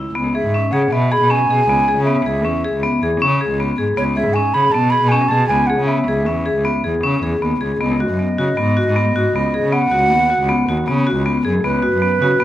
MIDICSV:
0, 0, Header, 1, 4, 480
1, 0, Start_track
1, 0, Key_signature, 4, "minor"
1, 0, Tempo, 383142
1, 190, Time_signature, 5, 2, 24, 8
1, 15589, End_track
2, 0, Start_track
2, 0, Title_t, "Flute"
2, 0, Program_c, 0, 73
2, 424, Note_on_c, 0, 76, 89
2, 903, Note_on_c, 0, 78, 80
2, 922, Note_off_c, 0, 76, 0
2, 1155, Note_on_c, 0, 76, 91
2, 1174, Note_off_c, 0, 78, 0
2, 1399, Note_on_c, 0, 83, 104
2, 1417, Note_off_c, 0, 76, 0
2, 1640, Note_on_c, 0, 80, 103
2, 1659, Note_off_c, 0, 83, 0
2, 2554, Note_off_c, 0, 80, 0
2, 2561, Note_on_c, 0, 76, 88
2, 3963, Note_off_c, 0, 76, 0
2, 4978, Note_on_c, 0, 73, 91
2, 5054, Note_off_c, 0, 73, 0
2, 5210, Note_on_c, 0, 76, 89
2, 5432, Note_on_c, 0, 80, 95
2, 5451, Note_off_c, 0, 76, 0
2, 5686, Note_on_c, 0, 83, 91
2, 5705, Note_off_c, 0, 80, 0
2, 5910, Note_on_c, 0, 81, 96
2, 5929, Note_off_c, 0, 83, 0
2, 6142, Note_on_c, 0, 83, 106
2, 6161, Note_off_c, 0, 81, 0
2, 6369, Note_on_c, 0, 80, 99
2, 6388, Note_off_c, 0, 83, 0
2, 6621, Note_on_c, 0, 81, 96
2, 6640, Note_off_c, 0, 80, 0
2, 6853, Note_off_c, 0, 81, 0
2, 6861, Note_on_c, 0, 80, 102
2, 7102, Note_on_c, 0, 78, 87
2, 7121, Note_off_c, 0, 80, 0
2, 7330, Note_off_c, 0, 78, 0
2, 7338, Note_on_c, 0, 76, 86
2, 8751, Note_off_c, 0, 76, 0
2, 9777, Note_on_c, 0, 75, 91
2, 12185, Note_on_c, 0, 78, 119
2, 12204, Note_off_c, 0, 75, 0
2, 13626, Note_off_c, 0, 78, 0
2, 14581, Note_on_c, 0, 71, 99
2, 15589, Note_off_c, 0, 71, 0
2, 15589, End_track
3, 0, Start_track
3, 0, Title_t, "Vibraphone"
3, 0, Program_c, 1, 11
3, 189, Note_on_c, 1, 59, 81
3, 360, Note_off_c, 1, 59, 0
3, 437, Note_on_c, 1, 68, 66
3, 605, Note_off_c, 1, 68, 0
3, 679, Note_on_c, 1, 61, 64
3, 847, Note_off_c, 1, 61, 0
3, 913, Note_on_c, 1, 68, 75
3, 1082, Note_off_c, 1, 68, 0
3, 1159, Note_on_c, 1, 59, 73
3, 1326, Note_off_c, 1, 59, 0
3, 1397, Note_on_c, 1, 68, 76
3, 1565, Note_off_c, 1, 68, 0
3, 1628, Note_on_c, 1, 61, 79
3, 1799, Note_off_c, 1, 61, 0
3, 1885, Note_on_c, 1, 68, 69
3, 2050, Note_off_c, 1, 68, 0
3, 2121, Note_on_c, 1, 59, 74
3, 2287, Note_off_c, 1, 59, 0
3, 2360, Note_on_c, 1, 68, 71
3, 2526, Note_off_c, 1, 68, 0
3, 2593, Note_on_c, 1, 59, 80
3, 2762, Note_off_c, 1, 59, 0
3, 2835, Note_on_c, 1, 68, 64
3, 3003, Note_off_c, 1, 68, 0
3, 3067, Note_on_c, 1, 61, 63
3, 3238, Note_off_c, 1, 61, 0
3, 3313, Note_on_c, 1, 68, 72
3, 3482, Note_off_c, 1, 68, 0
3, 3549, Note_on_c, 1, 59, 88
3, 3719, Note_off_c, 1, 59, 0
3, 3794, Note_on_c, 1, 68, 74
3, 3962, Note_off_c, 1, 68, 0
3, 4031, Note_on_c, 1, 61, 92
3, 4200, Note_off_c, 1, 61, 0
3, 4270, Note_on_c, 1, 68, 69
3, 4439, Note_off_c, 1, 68, 0
3, 4510, Note_on_c, 1, 59, 73
3, 4679, Note_off_c, 1, 59, 0
3, 4738, Note_on_c, 1, 68, 67
3, 4911, Note_off_c, 1, 68, 0
3, 4978, Note_on_c, 1, 59, 93
3, 5151, Note_off_c, 1, 59, 0
3, 5225, Note_on_c, 1, 68, 76
3, 5395, Note_off_c, 1, 68, 0
3, 5457, Note_on_c, 1, 61, 71
3, 5630, Note_off_c, 1, 61, 0
3, 5693, Note_on_c, 1, 68, 76
3, 5867, Note_off_c, 1, 68, 0
3, 5941, Note_on_c, 1, 59, 76
3, 6113, Note_off_c, 1, 59, 0
3, 6165, Note_on_c, 1, 68, 68
3, 6343, Note_off_c, 1, 68, 0
3, 6411, Note_on_c, 1, 61, 79
3, 6586, Note_off_c, 1, 61, 0
3, 6653, Note_on_c, 1, 68, 68
3, 6827, Note_off_c, 1, 68, 0
3, 6897, Note_on_c, 1, 59, 77
3, 7070, Note_off_c, 1, 59, 0
3, 7137, Note_on_c, 1, 68, 76
3, 7310, Note_off_c, 1, 68, 0
3, 7369, Note_on_c, 1, 59, 79
3, 7545, Note_off_c, 1, 59, 0
3, 7619, Note_on_c, 1, 68, 65
3, 7791, Note_off_c, 1, 68, 0
3, 7848, Note_on_c, 1, 61, 68
3, 8024, Note_off_c, 1, 61, 0
3, 8090, Note_on_c, 1, 68, 72
3, 8265, Note_off_c, 1, 68, 0
3, 8327, Note_on_c, 1, 59, 84
3, 8504, Note_off_c, 1, 59, 0
3, 8571, Note_on_c, 1, 68, 67
3, 8746, Note_off_c, 1, 68, 0
3, 8812, Note_on_c, 1, 61, 84
3, 8987, Note_off_c, 1, 61, 0
3, 9055, Note_on_c, 1, 68, 72
3, 9229, Note_off_c, 1, 68, 0
3, 9299, Note_on_c, 1, 59, 74
3, 9472, Note_off_c, 1, 59, 0
3, 9532, Note_on_c, 1, 68, 67
3, 9707, Note_off_c, 1, 68, 0
3, 9781, Note_on_c, 1, 59, 85
3, 9953, Note_off_c, 1, 59, 0
3, 10026, Note_on_c, 1, 66, 73
3, 10197, Note_off_c, 1, 66, 0
3, 10260, Note_on_c, 1, 59, 62
3, 10433, Note_off_c, 1, 59, 0
3, 10504, Note_on_c, 1, 66, 76
3, 10675, Note_off_c, 1, 66, 0
3, 10738, Note_on_c, 1, 59, 86
3, 10911, Note_off_c, 1, 59, 0
3, 10985, Note_on_c, 1, 66, 70
3, 11156, Note_off_c, 1, 66, 0
3, 11227, Note_on_c, 1, 59, 80
3, 11397, Note_off_c, 1, 59, 0
3, 11474, Note_on_c, 1, 66, 74
3, 11642, Note_off_c, 1, 66, 0
3, 11721, Note_on_c, 1, 59, 74
3, 11887, Note_off_c, 1, 59, 0
3, 11952, Note_on_c, 1, 68, 71
3, 12121, Note_off_c, 1, 68, 0
3, 12185, Note_on_c, 1, 59, 89
3, 12356, Note_off_c, 1, 59, 0
3, 12421, Note_on_c, 1, 66, 72
3, 12594, Note_off_c, 1, 66, 0
3, 12660, Note_on_c, 1, 59, 65
3, 12833, Note_off_c, 1, 59, 0
3, 12904, Note_on_c, 1, 66, 70
3, 13076, Note_off_c, 1, 66, 0
3, 13141, Note_on_c, 1, 59, 87
3, 13314, Note_off_c, 1, 59, 0
3, 13387, Note_on_c, 1, 66, 68
3, 13558, Note_off_c, 1, 66, 0
3, 13628, Note_on_c, 1, 59, 82
3, 13798, Note_off_c, 1, 59, 0
3, 13866, Note_on_c, 1, 66, 76
3, 14037, Note_off_c, 1, 66, 0
3, 14103, Note_on_c, 1, 59, 85
3, 14275, Note_off_c, 1, 59, 0
3, 14340, Note_on_c, 1, 68, 69
3, 14513, Note_off_c, 1, 68, 0
3, 14584, Note_on_c, 1, 59, 86
3, 14756, Note_off_c, 1, 59, 0
3, 14814, Note_on_c, 1, 66, 75
3, 14989, Note_off_c, 1, 66, 0
3, 15060, Note_on_c, 1, 59, 66
3, 15232, Note_off_c, 1, 59, 0
3, 15309, Note_on_c, 1, 66, 81
3, 15479, Note_off_c, 1, 66, 0
3, 15535, Note_on_c, 1, 59, 93
3, 15589, Note_off_c, 1, 59, 0
3, 15589, End_track
4, 0, Start_track
4, 0, Title_t, "Cello"
4, 0, Program_c, 2, 42
4, 0, Note_on_c, 2, 37, 65
4, 161, Note_off_c, 2, 37, 0
4, 184, Note_on_c, 2, 37, 87
4, 414, Note_off_c, 2, 37, 0
4, 552, Note_on_c, 2, 44, 80
4, 779, Note_off_c, 2, 44, 0
4, 908, Note_on_c, 2, 49, 83
4, 1023, Note_off_c, 2, 49, 0
4, 1151, Note_on_c, 2, 47, 78
4, 1491, Note_off_c, 2, 47, 0
4, 1508, Note_on_c, 2, 47, 87
4, 1736, Note_off_c, 2, 47, 0
4, 1874, Note_on_c, 2, 47, 85
4, 2099, Note_off_c, 2, 47, 0
4, 2115, Note_on_c, 2, 37, 86
4, 2339, Note_off_c, 2, 37, 0
4, 2477, Note_on_c, 2, 49, 88
4, 2700, Note_off_c, 2, 49, 0
4, 2838, Note_on_c, 2, 37, 81
4, 3072, Note_on_c, 2, 40, 74
4, 3091, Note_off_c, 2, 37, 0
4, 3411, Note_off_c, 2, 40, 0
4, 3430, Note_on_c, 2, 37, 84
4, 3656, Note_off_c, 2, 37, 0
4, 3782, Note_on_c, 2, 40, 85
4, 3898, Note_off_c, 2, 40, 0
4, 4023, Note_on_c, 2, 49, 89
4, 4366, Note_off_c, 2, 49, 0
4, 4385, Note_on_c, 2, 37, 88
4, 4726, Note_off_c, 2, 37, 0
4, 4749, Note_on_c, 2, 44, 85
4, 4861, Note_off_c, 2, 44, 0
4, 4981, Note_on_c, 2, 37, 97
4, 5210, Note_off_c, 2, 37, 0
4, 5350, Note_on_c, 2, 44, 86
4, 5575, Note_off_c, 2, 44, 0
4, 5699, Note_on_c, 2, 49, 84
4, 5816, Note_off_c, 2, 49, 0
4, 5939, Note_on_c, 2, 47, 86
4, 6283, Note_off_c, 2, 47, 0
4, 6302, Note_on_c, 2, 47, 96
4, 6531, Note_off_c, 2, 47, 0
4, 6659, Note_on_c, 2, 47, 88
4, 6889, Note_off_c, 2, 47, 0
4, 6902, Note_on_c, 2, 37, 87
4, 7130, Note_off_c, 2, 37, 0
4, 7257, Note_on_c, 2, 49, 91
4, 7488, Note_off_c, 2, 49, 0
4, 7624, Note_on_c, 2, 37, 81
4, 7867, Note_on_c, 2, 40, 81
4, 7885, Note_off_c, 2, 37, 0
4, 8207, Note_off_c, 2, 40, 0
4, 8222, Note_on_c, 2, 37, 80
4, 8450, Note_off_c, 2, 37, 0
4, 8590, Note_on_c, 2, 40, 84
4, 8701, Note_off_c, 2, 40, 0
4, 8824, Note_on_c, 2, 49, 85
4, 9051, Note_off_c, 2, 49, 0
4, 9062, Note_on_c, 2, 40, 83
4, 9279, Note_off_c, 2, 40, 0
4, 9305, Note_on_c, 2, 39, 74
4, 9521, Note_off_c, 2, 39, 0
4, 9543, Note_on_c, 2, 37, 76
4, 9760, Note_off_c, 2, 37, 0
4, 9783, Note_on_c, 2, 37, 96
4, 10012, Note_off_c, 2, 37, 0
4, 10149, Note_on_c, 2, 42, 83
4, 10375, Note_off_c, 2, 42, 0
4, 10509, Note_on_c, 2, 49, 89
4, 10621, Note_off_c, 2, 49, 0
4, 10750, Note_on_c, 2, 44, 91
4, 11089, Note_off_c, 2, 44, 0
4, 11109, Note_on_c, 2, 44, 99
4, 11335, Note_off_c, 2, 44, 0
4, 11473, Note_on_c, 2, 44, 88
4, 11697, Note_off_c, 2, 44, 0
4, 11708, Note_on_c, 2, 37, 81
4, 11935, Note_off_c, 2, 37, 0
4, 12067, Note_on_c, 2, 49, 79
4, 12294, Note_off_c, 2, 49, 0
4, 12428, Note_on_c, 2, 37, 85
4, 12669, Note_on_c, 2, 39, 78
4, 12688, Note_off_c, 2, 37, 0
4, 13009, Note_off_c, 2, 39, 0
4, 13029, Note_on_c, 2, 37, 91
4, 13256, Note_off_c, 2, 37, 0
4, 13384, Note_on_c, 2, 39, 93
4, 13499, Note_off_c, 2, 39, 0
4, 13628, Note_on_c, 2, 49, 93
4, 13969, Note_off_c, 2, 49, 0
4, 13985, Note_on_c, 2, 37, 86
4, 14327, Note_off_c, 2, 37, 0
4, 14349, Note_on_c, 2, 42, 91
4, 14462, Note_off_c, 2, 42, 0
4, 14586, Note_on_c, 2, 37, 92
4, 14813, Note_off_c, 2, 37, 0
4, 14944, Note_on_c, 2, 42, 88
4, 15172, Note_off_c, 2, 42, 0
4, 15298, Note_on_c, 2, 49, 87
4, 15416, Note_off_c, 2, 49, 0
4, 15539, Note_on_c, 2, 44, 94
4, 15589, Note_off_c, 2, 44, 0
4, 15589, End_track
0, 0, End_of_file